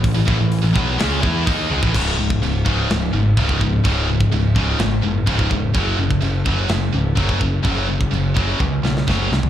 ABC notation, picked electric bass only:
X:1
M:4/4
L:1/16
Q:1/4=126
K:C#m
V:1 name="Picked electric bass" clef=bass
A,,, A,,, A,,, A,,,2 A,,, B,,,2 C,,2 E,,2 D,,2 C,, A,,, | C,,,2 C,,,2 C,,,2 C,,,2 C,,,2 G,,,2 C,,,4 | C,,,4 C,,,4 G,,,2 F,,,2 C,,,2 E,,,2 | F,,,2 F,,,2 F,,,2 F,,,2 F,,,2 C,,,2 F,,,4 |
F,,,4 F,,,4 C,,2 B,,,2 F,,,2 ^B,,,2 |]